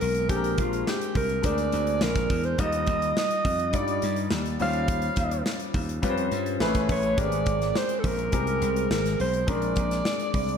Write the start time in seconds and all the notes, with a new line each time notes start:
Already playing: G#3 C4 G4 G#4 A#4
0.01 B1 A#4, open hi-hat
0.15 closed hi-hat
0.29 A#1 G#3 C4 D4 G4 A4, kick, closed hi-hat
0.36 A#4
0.44 closed hi-hat
0.58 A#1 F4, kick, closed hi-hat
0.73 closed hi-hat
0.87 G4, snare
1.01 closed hi-hat
1.15 C2 A#4, kick, open hi-hat
1.29 closed hi-hat
1.42 D2 G#3 C4 D4 A#4 D5, kick, closed hi-hat
1.58 closed hi-hat
1.72 D2, closed hi-hat
1.87 closed hi-hat
2.01 A#1 A#4, snare
2.15 kick, snare, closed hi-hat
2.30 E2, kick, open hi-hat
2.44 C5, closed hi-hat
2.58 D#2 G3 D#4 F4 D#5, kick, closed hi-hat
2.72 closed hi-hat
2.86 D#2, kick, closed hi-hat
3.02 closed hi-hat
3.17 D#5, snare
3.31 closed hi-hat
3.45 F2, kick, open hi-hat
3.60 closed hi-hat
3.73 G2 G3 D#4 F4 D5, kick, closed hi-hat
3.88 closed hi-hat
4.02 G2, closed hi-hat
4.16 closed hi-hat
4.31 D#2, snare
4.46 closed hi-hat
4.59 D#2 G3 C#4 F4 C5 F5, open hi-hat
4.73 closed hi-hat
4.88 kick, closed hi-hat
5.02 closed hi-hat
5.16 D#2, kick, closed hi-hat
5.31 closed hi-hat
5.46 snare
5.59 closed hi-hat
5.74 D#2, kick, open hi-hat
5.89 closed hi-hat
6.02 F2 G3 C#4 F4 B4, kick, closed hi-hat
6.10 C5
6.17 closed hi-hat
6.31 G2, closed hi-hat
6.46 closed hi-hat
6.60 A1 A3 C4 G#4 B4, snare
6.67 C#4
6.75 kick, snare, closed hi-hat
6.89 A1 C#5, kick, open hi-hat
7.03 closed hi-hat
7.17 G#1 G#3 B3 G4 A#4 D5, kick, closed hi-hat
7.24 C4
7.32 closed hi-hat
7.46 G#1, kick, closed hi-hat
7.62 snare, closed hi-hat
7.75 C5, snare
7.89 closed hi-hat
7.99 A4
8.04 A#1 A#4, kick, open hi-hat
8.19 closed hi-hat
8.32 C2 G#3 C4 G4 A#4, kick, closed hi-hat
8.47 closed hi-hat
8.62 C2, closed hi-hat
8.76 closed hi-hat
8.90 G#1 A#4, snare
9.06 snare, closed hi-hat
9.20 B1 C5, open hi-hat
9.33 closed hi-hat
9.47 A#1 G#3 C4 D4 A#4 D5, kick, closed hi-hat
9.62 closed hi-hat
9.76 A#1, kick, closed hi-hat
9.91 snare, closed hi-hat
10.05 snare
10.20 closed hi-hat
10.34 C2, kick, open hi-hat
10.49 closed hi-hat